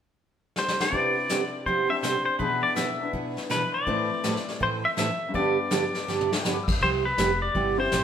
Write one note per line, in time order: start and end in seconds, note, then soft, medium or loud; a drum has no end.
0.56 0.81 C5 medium
0.56 snare medium
0.68 snare medium
0.80 1.66 D5 medium
0.80 snare medium
0.90 2.39 C3 soft
0.90 1.14 C3 medium
0.90 1.14 G3 medium
0.90 1.14 B3 medium
0.90 1.87 C4 soft
0.90 1.88 D4 soft
0.90 1.14 E4 medium
0.90 2.39 E4 soft
0.90 1.14 G4 medium
0.90 brush sweep soft
0.90 kick soft
0.95 2.41 B4 medium
1.29 1.41 C3 medium
1.29 1.41 G3 medium
1.29 1.41 B3 medium
1.29 1.41 E4 medium
1.29 1.41 G4 medium
1.29 snare medium
1.29 hi-hat pedal medium
1.66 1.88 C3 medium
1.66 1.88 G3 medium
1.66 1.88 B3 medium
1.66 1.89 E4 medium
1.66 1.89 G4 medium
1.66 1.88 C5 medium
1.66 brush sweep soft
1.66 kick soft
1.88 2.40 C4 soft
1.88 2.38 D4 soft
1.88 2.41 G4 soft
1.88 1.95 E5 medium
2.02 2.14 C3 medium
2.02 2.14 G3 medium
2.02 2.15 B3 medium
2.02 2.15 E4 medium
2.02 2.15 G4 medium
2.02 2.24 C5 medium
2.02 snare medium
2.02 hi-hat pedal medium
2.25 2.39 C5 medium
2.39 2.61 B2 medium
2.39 3.87 B2 soft
2.39 2.61 E3 medium
2.39 2.99 B3 soft
2.39 2.61 B3 medium
2.39 3.00 D4 soft
2.39 2.61 D4 medium
2.39 3.02 E4 soft
2.39 3.87 G#4 medium
2.39 2.62 G#4 medium
2.39 2.61 B4 medium
2.39 brush sweep soft
2.39 kick soft
2.63 2.76 D5 medium
2.76 2.88 B2 medium
2.76 2.88 E3 medium
2.76 2.88 B3 medium
2.76 2.88 D4 medium
2.76 2.89 G#4 medium
2.76 3.11 E5 medium
2.76 snare medium
2.76 hi-hat pedal soft
3.00 3.87 B3 soft
3.00 3.88 D4 soft
3.00 3.86 E4 soft
3.13 3.35 B2 medium
3.13 3.35 E3 medium
3.13 3.35 B3 medium
3.13 3.35 D4 medium
3.13 3.36 G#4 medium
3.13 brush sweep soft
3.13 kick soft
3.37 snare soft
3.49 3.61 B2 medium
3.49 3.61 E3 medium
3.49 3.61 B3 medium
3.49 3.62 D4 medium
3.49 3.62 G#4 medium
3.49 3.72 B4 medium
3.49 snare medium
3.49 hi-hat pedal medium
3.74 4.62 D5 medium
3.86 4.08 A2 medium
3.86 5.34 A2 medium
3.86 4.08 E3 medium
3.86 5.34 A3 soft
3.86 4.09 A3 medium
3.86 5.34 C4 soft
3.86 4.09 C4 medium
3.86 5.34 E4 soft
3.86 4.09 E4 medium
3.86 4.09 B4 medium
3.86 5.35 B4 medium
3.86 brush sweep soft
3.86 kick soft
4.24 4.35 A2 medium
4.24 4.35 E3 medium
4.24 4.35 A3 medium
4.24 4.36 C4 medium
4.24 4.36 E4 medium
4.24 4.36 B4 medium
4.24 snare medium
4.24 hi-hat pedal soft
4.36 snare soft
4.48 snare soft
4.60 4.82 A2 medium
4.60 4.82 E3 medium
4.60 4.82 A3 medium
4.60 4.82 C4 medium
4.60 4.82 E4 medium
4.60 4.82 B4 medium
4.60 4.69 C5 medium
4.60 brush sweep soft
4.60 kick soft
4.85 4.90 E5 medium
4.97 5.08 A2 medium
4.97 5.09 E3 medium
4.97 5.09 A3 medium
4.97 5.09 C4 medium
4.97 5.09 E4 medium
4.97 5.09 B4 medium
4.97 5.33 E5 medium
4.97 snare medium
4.97 hi-hat pedal medium
5.29 6.78 G2 medium
5.29 6.80 G3 medium
5.34 5.56 G2 medium
5.34 5.56 D3 medium
5.34 5.56 G3 medium
5.34 6.81 B3 medium
5.34 5.56 B3 medium
5.34 5.56 D4 medium
5.34 6.83 D4 medium
5.34 5.56 G4 medium
5.34 6.41 D5 medium
5.34 brush sweep soft
5.34 kick soft
5.40 6.84 D5 medium
5.70 5.82 G2 medium
5.70 5.82 D3 medium
5.70 5.82 G3 medium
5.70 5.82 B3 medium
5.70 5.83 D4 medium
5.70 5.83 G4 medium
5.70 snare medium
5.70 hi-hat pedal medium
5.94 snare soft
6.07 6.29 G2 medium
6.07 6.29 D3 medium
6.07 6.29 G3 soft
6.07 6.29 B3 medium
6.07 6.29 D4 medium
6.07 6.30 G4 medium
6.07 snare soft
6.21 mid tom soft
6.25 6.37 E5 soft
6.32 6.48 G5 soft
6.32 snare medium
6.44 6.56 G2 medium
6.44 6.56 D3 medium
6.44 6.56 G3 medium
6.44 6.56 B3 medium
6.44 6.56 D4 medium
6.44 6.56 G4 medium
6.44 6.61 B5 soft
6.44 snare medium
6.44 hi-hat pedal medium
6.54 6.69 D6 soft
6.64 6.75 E6 medium
6.68 kick medium
6.68 crash medium
6.72 6.85 G6 medium
6.81 7.11 C2 medium
6.81 7.03 C3 soft
6.81 7.03 G3 medium
6.81 7.03 B3 medium
6.81 7.03 E4 medium
6.81 7.03 G4 medium
6.81 6.89 C5 medium
6.81 brush sweep soft
6.81 kick soft
7.05 7.42 B4 medium
7.18 7.49 F1 medium
7.18 7.29 C3 medium
7.18 7.29 G3 medium
7.18 7.29 B3 medium
7.18 7.30 E4 medium
7.18 7.30 G4 medium
7.18 snare medium
7.18 hi-hat pedal medium
7.42 7.79 D5 medium
7.55 7.86 G1 medium
7.55 7.76 C3 medium
7.55 7.76 G3 medium
7.55 7.76 B3 medium
7.55 7.77 E4 medium
7.55 7.77 G4 medium
7.55 brush sweep soft
7.55 kick soft
7.77 8.04 C4 medium
7.77 8.04 E4 medium
7.77 8.04 G4 medium
7.77 8.04 C5 medium
7.92 8.04 A1 medium
7.92 8.03 C3 medium
7.92 8.03 G3 medium
7.92 8.03 B3 medium
7.92 8.03 E4 medium
7.92 8.04 G4 medium
7.92 snare medium
7.92 hi-hat pedal medium